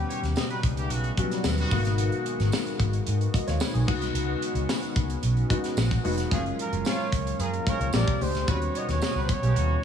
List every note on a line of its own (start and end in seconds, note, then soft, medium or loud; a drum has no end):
0.00 3.85 B2 medium
0.00 1.70 C#3 medium
0.00 0.63 G3 medium
0.00 1.70 G3 medium
0.00 0.63 B3 medium
0.00 0.63 C#4 medium
0.00 1.70 D#4 medium
0.00 0.64 G4 medium
0.00 0.63 F#5 medium
0.08 0.19 G3 medium
0.08 0.20 F#4 medium
0.08 0.20 C#5 medium
0.08 closed hi-hat medium
0.23 0.32 D#2 medium
0.23 snare soft
0.23 closed hi-hat soft
0.36 0.47 B3 medium
0.36 0.47 G4 medium
0.36 0.47 D#5 medium
0.36 snare medium
0.36 tambourine medium
0.50 0.61 G3 medium
0.50 0.61 F#4 medium
0.50 0.61 B4 medium
0.50 closed hi-hat soft
0.63 0.90 C#2 medium
0.63 kick medium
0.63 closed hi-hat medium
0.77 0.88 C#3 medium
0.77 0.88 B3 medium
0.77 0.88 G4 medium
0.77 closed hi-hat soft
0.90 1.09 B1 medium
0.90 1.12 C#3 medium
0.90 1.12 B3 medium
0.90 1.12 F#4 loud
0.90 closed hi-hat medium
1.04 closed hi-hat soft
1.17 1.24 F#3 medium
1.17 1.58 B3 medium
1.17 1.58 C#4 medium
1.17 1.58 F#4 medium
1.17 kick medium
1.17 closed hi-hat medium
1.24 1.61 G3 medium
1.31 snare soft
1.31 closed hi-hat medium
1.44 1.63 D#2 medium
1.44 snare loud
1.44 tambourine loud
1.58 1.80 D#3 medium
1.58 1.80 B3 loud
1.58 1.80 F#4 loud
1.58 closed hi-hat soft
1.71 2.09 G#1 medium
1.71 6.28 D#3 medium
1.71 3.85 G#3 medium
1.71 2.58 A#3 medium
1.71 2.58 B3 medium
1.71 2.58 D#4 medium
1.71 6.27 F#4 medium
1.71 2.59 F#4 loud
1.71 kick loud
1.71 open hi-hat medium
1.85 snare soft
1.85 closed hi-hat medium
1.98 closed hi-hat medium
2.12 closed hi-hat soft
2.26 closed hi-hat medium
2.40 2.49 G#1 medium
2.40 snare soft
2.40 closed hi-hat soft
2.52 snare loud
2.52 tambourine medium
2.66 closed hi-hat soft
2.79 2.98 G#1 medium
2.79 kick medium
2.79 closed hi-hat medium
2.93 closed hi-hat soft
3.07 3.26 G#2 loud
3.07 closed hi-hat medium
3.21 closed hi-hat soft
3.34 3.47 F#4 medium
3.34 3.47 D#5 medium
3.34 kick medium
3.34 closed hi-hat medium
3.47 3.57 D#2 medium
3.47 3.61 F4 medium
3.47 3.60 C#5 medium
3.47 snare soft
3.47 closed hi-hat medium
3.60 3.74 D#4 medium
3.60 3.74 B4 medium
3.60 snare loud
3.60 tambourine loud
3.74 3.84 B1 medium
3.74 3.86 B3 medium
3.74 4.00 G#4 medium
3.74 closed hi-hat soft
3.87 4.02 C#2 medium
3.87 4.74 G#3 medium
3.87 4.74 B3 medium
3.87 6.30 B3 medium
3.87 6.29 C#4 medium
3.87 4.74 D#4 medium
3.87 4.75 F#4 loud
3.87 kick loud
3.87 crash medium
4.02 4.11 C2 medium
4.02 snare soft
4.02 closed hi-hat medium
4.14 4.33 C#2 loud
4.14 closed hi-hat medium
4.42 closed hi-hat medium
4.54 4.64 C#2 medium
4.54 closed hi-hat soft
4.69 snare loud
4.69 tambourine medium
4.82 closed hi-hat soft
4.96 5.15 C#2 medium
4.96 kick medium
4.96 closed hi-hat medium
5.10 closed hi-hat soft
5.23 5.42 B1 medium
5.23 closed hi-hat medium
5.37 closed hi-hat soft
5.49 5.90 G#3 medium
5.49 5.90 B3 medium
5.49 5.90 D#4 medium
5.49 5.91 F#4 medium
5.49 kick medium
5.49 closed hi-hat medium
5.64 snare soft
5.64 closed hi-hat medium
5.77 5.96 A#1 medium
5.77 snare loud
5.77 tambourine loud
5.91 kick medium
5.91 closed hi-hat soft
6.04 6.23 F1 medium
6.04 6.24 G#3 medium
6.04 6.25 B3 medium
6.04 6.25 D#4 medium
6.04 6.25 F#4 loud
6.04 open hi-hat medium
6.18 snare soft
6.18 closed hi-hat medium
6.30 6.50 F#1 medium
6.30 6.43 F3 loud
6.30 7.93 F#3 medium
6.30 7.12 G#3 medium
6.30 8.46 G#3 medium
6.30 7.12 A#3 medium
6.30 7.93 A#3 medium
6.30 7.12 C#4 medium
6.30 6.43 C#4 loud
6.30 7.12 F4 loud
6.30 7.93 F4 medium
6.30 6.43 G#4 loud
6.30 kick loud
6.30 closed hi-hat medium
6.46 closed hi-hat soft
6.59 6.71 F3 medium
6.59 6.70 C#4 medium
6.59 6.71 A#4 medium
6.59 6.85 A#4 medium
6.59 closed hi-hat medium
6.72 6.82 F#1 medium
6.72 closed hi-hat soft
6.85 7.08 C#3 medium
6.85 7.08 A#3 medium
6.85 7.08 F4 loud
6.85 7.43 C#5 medium
6.85 snare loud
6.85 tambourine medium
7.12 7.31 C#2 medium
7.12 kick medium
7.12 closed hi-hat medium
7.27 closed hi-hat soft
7.39 7.58 F#2 loud
7.39 7.50 F3 medium
7.39 7.50 C#4 medium
7.39 7.50 G#4 medium
7.39 7.71 A#4 medium
7.39 closed hi-hat medium
7.53 closed hi-hat soft
7.66 7.89 F3 loud
7.66 7.91 G#3 medium
7.66 7.94 A#3 medium
7.66 7.88 C#4 loud
7.66 7.94 C#4 medium
7.66 7.94 F4 medium
7.66 7.88 A#4 loud
7.66 7.81 C#5 medium
7.66 kick medium
7.66 closed hi-hat medium
7.80 7.90 C#2 medium
7.80 7.94 C#5 medium
7.80 closed hi-hat medium
7.92 8.03 A#1 loud
7.92 8.49 D3 medium
7.92 8.15 G3 loud
7.92 8.15 G#3 medium
7.92 8.16 C4 medium
7.92 8.48 C4 medium
7.92 8.16 D4 medium
7.92 8.15 F4 loud
7.92 8.16 G4 medium
7.92 8.49 G4 medium
7.92 8.15 A#4 loud
7.92 8.24 D5 medium
7.92 snare loud
7.92 tambourine loud
8.07 8.17 C2 medium
8.07 kick medium
8.07 closed hi-hat soft
8.20 8.31 C#2 medium
8.20 8.41 G#3 medium
8.20 8.41 C4 medium
8.20 8.41 D4 medium
8.20 8.41 G4 medium
8.20 8.52 C5 loud
8.20 open hi-hat medium
8.34 8.44 D2 medium
8.34 snare soft
8.34 closed hi-hat medium
8.47 8.67 D#2 loud
8.47 9.84 B2 medium
8.47 9.84 C#3 medium
8.47 9.28 G3 medium
8.47 8.59 G3 medium
8.47 9.84 G3 medium
8.47 9.28 B3 medium
8.47 9.28 C#4 medium
8.47 9.84 D#4 medium
8.47 8.59 F#4 loud
8.47 9.29 F#4 medium
8.47 8.59 B4 loud
8.47 8.79 C#5 loud
8.47 kick loud
8.47 closed hi-hat medium
8.62 closed hi-hat soft
8.75 8.86 G3 medium
8.75 8.87 F#4 medium
8.75 8.86 C#5 medium
8.75 8.90 D#5 medium
8.75 closed hi-hat medium
8.88 8.98 D#2 loud
8.88 9.22 C#5 medium
8.88 snare soft
8.88 closed hi-hat soft
9.01 9.13 B3 medium
9.01 9.13 G4 medium
9.01 9.13 D#5 medium
9.01 snare loud
9.01 tambourine medium
9.15 9.25 C#2 medium
9.15 9.27 G3 medium
9.15 9.27 F#4 medium
9.15 9.27 B4 medium
9.24 9.33 C5 medium
9.29 9.84 C#5 loud
9.29 kick medium
9.29 closed hi-hat medium
9.41 9.52 B1 medium
9.41 9.53 C#3 medium
9.41 9.53 B3 medium
9.41 9.53 G4 loud
9.41 closed hi-hat soft
9.55 9.75 D#2 medium
9.55 9.78 C#3 medium
9.55 9.78 B3 medium
9.55 9.78 F#4 loud
9.55 closed hi-hat medium